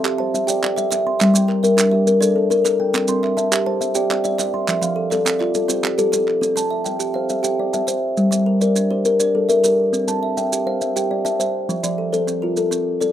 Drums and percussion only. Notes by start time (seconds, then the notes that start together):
0.05 clap
0.35 maracas
0.48 maracas
0.63 clap
0.78 maracas
0.92 clap, maracas
1.21 clap, maracas
1.35 maracas
1.49 clap
1.64 maracas
1.78 clap, maracas
2.07 maracas
2.22 maracas
2.51 maracas
2.65 clap, maracas
2.94 clap, maracas
3.08 maracas
3.24 clap
3.38 maracas
3.52 clap, maracas
3.81 maracas
3.95 maracas
4.11 clap
4.24 maracas
4.39 clap, maracas
4.68 clap, maracas
4.83 maracas
5.12 clap, maracas
5.26 clap, maracas
5.41 clap
5.55 maracas
5.69 maracas
5.84 clap
5.99 maracas
6.13 maracas
6.28 clap
6.43 maracas
6.57 maracas
6.86 maracas
7.00 maracas
7.29 maracas
7.44 maracas
7.74 maracas
7.88 maracas
8.17 maracas
8.32 maracas
8.61 maracas
8.76 maracas
9.05 maracas
9.20 maracas
9.49 maracas
9.64 maracas
9.94 maracas
10.08 maracas
10.37 maracas
10.53 maracas
10.81 maracas
10.97 maracas
11.26 maracas
11.40 maracas
11.70 maracas
11.84 maracas
12.13 maracas
12.28 maracas
12.57 maracas
12.72 maracas
13.01 maracas